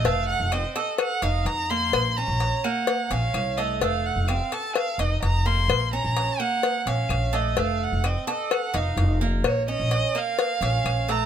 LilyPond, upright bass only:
\new Staff \with { instrumentName = "Upright bass" } { \clef bass \time 4/4 \key bes \minor \tempo 4 = 128 f,,8. f,,8 r4 r16 f,,8 f,4 | bes,,8. bes,,8 r4 r16 bes,,8 c,4 | f,,8. f,,8 r4 r16 f,,8 f,,4 | bes,,8. bes,,8 r4 r16 bes,,8 bes,,4 |
f,,8. f,,8 r4 r16 f,,8 f,,4 | bes,,8. bes,,8 r4 r16 bes,,8 bes,,4 | }